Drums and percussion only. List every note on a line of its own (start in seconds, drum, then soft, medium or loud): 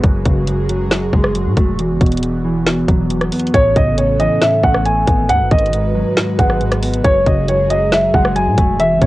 0.04 kick loud
0.04 closed hi-hat medium
0.26 kick medium
0.26 closed hi-hat medium
0.47 closed hi-hat medium
0.69 closed hi-hat medium
0.91 snare loud
0.91 closed hi-hat medium
1.13 kick medium
1.24 cross-stick loud
1.35 closed hi-hat medium
1.57 kick loud
1.57 closed hi-hat medium
1.79 closed hi-hat medium
2.01 kick loud
2.01 closed hi-hat medium
2.06 closed hi-hat medium
2.12 closed hi-hat medium
2.17 closed hi-hat medium
2.23 closed hi-hat medium
2.66 snare loud
2.66 closed hi-hat medium
2.88 kick medium
2.88 closed hi-hat medium
3.10 closed hi-hat medium
3.21 cross-stick medium
3.21 closed hi-hat soft
3.32 closed hi-hat medium
3.32 open hi-hat medium
3.39 closed hi-hat medium
3.47 closed hi-hat soft
3.54 kick loud
3.54 closed hi-hat medium
3.76 kick loud
3.76 closed hi-hat medium
3.98 closed hi-hat medium
4.20 closed hi-hat medium
4.42 snare loud
4.42 closed hi-hat medium
4.64 kick medium
4.74 cross-stick loud
4.85 closed hi-hat medium
5.07 kick loud
5.07 closed hi-hat medium
5.29 closed hi-hat medium
5.51 kick medium
5.51 closed hi-hat medium
5.58 closed hi-hat medium
5.66 closed hi-hat soft
5.73 closed hi-hat medium
6.17 snare loud
6.17 closed hi-hat medium
6.39 kick medium
6.39 closed hi-hat medium
6.50 cross-stick medium
6.61 closed hi-hat soft
6.72 cross-stick loud
6.72 closed hi-hat medium
6.83 closed hi-hat medium
6.83 open hi-hat medium
6.93 closed hi-hat medium
7.04 kick loud
7.04 closed hi-hat medium
7.26 kick medium
7.26 closed hi-hat medium
7.48 closed hi-hat medium
7.70 closed hi-hat medium
7.92 snare loud
7.92 closed hi-hat medium
8.14 kick medium
8.25 cross-stick loud
8.36 closed hi-hat medium
8.58 kick loud
8.58 closed hi-hat medium
8.80 closed hi-hat medium
9.02 kick loud
9.02 closed hi-hat medium